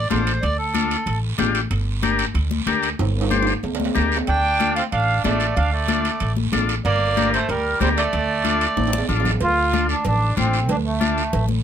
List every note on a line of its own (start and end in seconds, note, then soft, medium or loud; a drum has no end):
0.10 0.37 A1 medium
0.10 0.33 D4 medium
0.10 0.33 F4 medium
0.10 0.33 A4 medium
0.10 0.43 C5 medium
0.10 high conga medium
0.10 high timbale medium
0.10 low timbale medium
0.10 short guiro medium
0.27 high timbale medium
0.27 short guiro medium
0.42 0.94 D2 loud
0.42 0.57 D5 medium
0.42 high timbale medium
0.42 long guiro medium
0.58 1.19 A4 medium
0.74 0.97 D4 medium
0.74 0.97 F4 medium
0.74 0.97 A4 medium
0.74 high conga medium
0.74 high timbale medium
0.74 short guiro medium
0.91 high timbale medium
0.91 short guiro medium
1.06 1.32 A1 medium
1.06 high timbale medium
1.06 long guiro medium
1.38 1.64 A1 medium
1.38 1.61 D4 medium
1.38 1.61 F4 medium
1.38 1.61 G4 medium
1.38 high conga medium
1.38 high timbale medium
1.38 low timbale medium
1.38 short guiro medium
1.55 high timbale medium
1.55 short guiro medium
1.71 2.22 G1 loud
1.71 high timbale medium
1.71 long guiro medium
2.03 2.25 D4 medium
2.03 2.26 G4 medium
2.03 2.26 A#4 medium
2.03 high conga medium
2.03 high timbale medium
2.03 short guiro medium
2.19 high timbale medium
2.19 short guiro medium
2.34 2.60 D2 medium
2.34 high timbale medium
2.34 long guiro medium
2.51 high conga medium
2.67 2.93 D2 medium
2.67 2.90 D4 medium
2.67 2.90 G4 medium
2.67 2.90 A#4 medium
2.67 high conga medium
2.67 high timbale medium
2.67 short guiro medium
2.83 high timbale medium
2.83 short guiro medium
2.99 3.51 G1 loud
2.99 high timbale medium
2.99 long guiro medium
3.21 high timbale medium
3.30 3.53 D4 medium
3.30 3.54 G4 medium
3.30 3.54 C5 medium
3.30 high conga medium
3.30 high timbale medium
3.30 short guiro medium
3.43 high timbale medium
3.47 short guiro medium
3.63 3.89 D2 medium
3.63 low timbale medium
3.63 long guiro medium
3.75 low timbale medium
3.80 high conga medium
3.85 low timbale medium
3.94 4.22 D2 medium
3.94 4.18 D4 medium
3.94 4.18 G4 medium
3.94 4.18 A#4 medium
3.94 high conga medium
3.94 low timbale medium
3.94 short guiro medium
4.12 short guiro medium
4.17 low timbale medium
4.27 4.79 D2 medium
4.27 4.73 D4 medium
4.27 4.73 G5 loud
4.27 high timbale medium
4.27 long guiro medium
4.59 4.82 D4 medium
4.59 4.82 F4 medium
4.59 4.82 A4 medium
4.59 high conga medium
4.59 high timbale medium
4.59 short guiro medium
4.76 4.84 C4 medium
4.76 4.84 F5 medium
4.76 high timbale medium
4.76 short guiro medium
4.92 5.18 A1 medium
4.92 5.22 D4 medium
4.92 5.22 F5 medium
4.92 high timbale medium
4.92 long guiro medium
5.24 5.50 A1 medium
5.24 5.54 A3 medium
5.24 5.47 D4 medium
5.24 5.47 F4 medium
5.24 5.47 A4 medium
5.24 5.57 D5 medium
5.24 high conga medium
5.24 high timbale medium
5.24 low timbale medium
5.24 short guiro medium
5.40 high timbale medium
5.40 short guiro medium
5.57 6.08 D2 loud
5.57 5.71 D4 medium
5.57 5.73 F5 medium
5.57 high timbale medium
5.57 long guiro medium
5.72 6.33 A3 medium
5.72 6.33 D5 medium
5.88 6.11 D4 medium
5.88 6.11 F4 medium
5.88 6.11 A4 medium
5.88 high conga medium
5.88 high timbale medium
5.88 short guiro medium
6.05 high timbale medium
6.05 short guiro medium
6.20 6.46 A1 medium
6.20 high timbale medium
6.20 long guiro medium
6.36 high conga medium
6.52 6.78 A1 medium
6.52 6.75 D4 medium
6.52 6.75 F4 medium
6.52 6.75 A4 medium
6.52 high conga medium
6.52 high timbale medium
6.52 low timbale medium
6.52 short guiro medium
6.69 high timbale medium
6.69 short guiro medium
6.85 7.36 G1 loud
6.85 7.30 A#3 medium
6.85 7.30 D5 loud
6.85 high timbale medium
6.85 long guiro medium
7.16 7.39 D4 medium
7.16 7.39 G4 medium
7.16 7.39 A#4 medium
7.16 high conga medium
7.16 high timbale medium
7.16 short guiro medium
7.34 7.49 A3 medium
7.34 7.50 C5 medium
7.34 high timbale medium
7.34 short guiro medium
7.49 7.74 D2 medium
7.49 7.80 G3 medium
7.49 7.79 A#4 medium
7.49 high timbale medium
7.49 long guiro medium
7.80 8.06 D2 medium
7.80 7.89 G3 medium
7.80 8.03 D4 medium
7.80 8.03 G4 medium
7.80 8.03 A#4 medium
7.80 7.89 C5 medium
7.80 high conga medium
7.80 high timbale medium
7.80 low timbale medium
7.80 short guiro medium
7.97 9.05 A3 medium
7.97 9.06 D5 medium
7.97 high timbale medium
7.97 short guiro medium
8.13 8.64 D2 loud
8.13 high timbale medium
8.13 long guiro medium
8.44 8.67 D4 medium
8.44 8.67 F4 medium
8.44 8.67 A4 medium
8.44 high conga medium
8.44 high timbale medium
8.44 short guiro medium
8.61 high timbale medium
8.61 short guiro medium
8.77 9.03 A1 medium
8.77 high conga medium
8.77 high timbale medium
8.77 long guiro medium
8.88 high timbale medium
8.93 high conga medium
8.98 low timbale medium
9.08 9.35 A1 medium
9.08 9.31 D4 medium
9.08 9.32 F4 medium
9.08 9.32 A4 medium
9.08 low conga medium
9.08 short guiro medium
9.20 low timbale medium
9.25 low conga medium
9.25 short guiro medium
9.30 low timbale medium
9.41 9.92 D2 medium
9.41 9.87 F4 loud
9.41 cowbell medium
9.41 long guiro medium
9.73 9.96 D4 medium
9.73 9.96 F4 medium
9.73 9.96 A4 medium
9.73 high conga medium
9.73 short guiro medium
9.89 10.04 D4 medium
9.89 short guiro medium
10.05 10.31 A1 loud
10.05 10.35 D4 loud
10.05 cowbell medium
10.05 low conga medium
10.05 long guiro medium
10.37 10.69 A1 medium
10.37 10.71 C4 medium
10.37 10.59 D4 medium
10.37 10.60 F4 medium
10.37 10.60 C5 medium
10.37 high conga medium
10.37 short guiro medium
10.53 short guiro medium
10.69 11.20 D2 loud
10.69 10.76 D4 loud
10.69 cowbell medium
10.69 low conga medium
10.69 long guiro medium
10.85 11.46 A3 medium
11.00 11.23 D4 medium
11.00 11.23 F4 medium
11.00 11.24 A4 medium
11.00 high conga medium
11.00 short guiro medium
11.18 short guiro medium
11.33 11.59 A1 loud
11.33 cowbell medium
11.33 low conga medium
11.33 long guiro medium
11.49 high conga medium